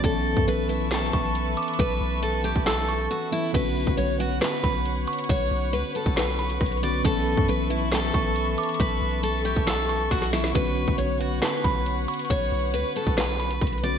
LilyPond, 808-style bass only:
\new Staff \with { instrumentName = "808-style bass" } { \clef bass \time 4/4 \key b \minor \tempo 4 = 137 b,,8. fis,16 b,,4. b,,4 r8 | b,,8 b,,4~ b,,16 b,,4~ b,,16 r4 | b,,8. b,,16 b,,4 r8 b,,4 r8 | b,,8 b,,8 cis,16 r8 b,,4~ b,,16 b,,4 |
b,,8. fis,16 b,,4. b,,4 r8 | b,,8 b,,4~ b,,16 b,,4~ b,,16 b,,4 | b,,8. b,,16 b,,4 r8 b,,4 r8 | b,,8 b,,8 cis,16 r8 b,,4~ b,,16 b,,4 | }